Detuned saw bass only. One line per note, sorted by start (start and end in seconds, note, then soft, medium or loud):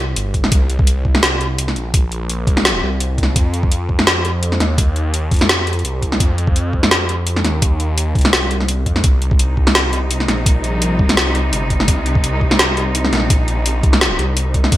0.00 0.15 C2 medium
0.16 0.51 G1 loud
0.52 1.22 C2 medium
1.23 1.75 C2 loud
1.76 2.46 A#1 loud
2.47 2.81 C2 loud
2.83 3.35 C2 loud
3.36 4.06 F2 loud
4.07 4.59 F2 loud
4.60 5.30 D#2 loud
5.31 5.83 F2 loud
5.84 6.19 C2 loud
6.20 6.90 F2 medium
6.91 7.43 F2 loud
7.44 8.14 D#2 loud
8.15 8.85 C2 loud
8.86 9.03 F2 loud
9.04 9.74 C2 medium
9.75 10.27 C2 medium
10.28 10.98 A#1 loud
10.99 11.51 C2 loud
11.52 11.87 G1 loud
11.88 12.58 C2 loud
12.59 13.11 C2 loud
13.12 13.82 A#1 loud
13.83 14.18 C2 medium
14.19 14.71 C2 loud
14.72 14.77 F2 loud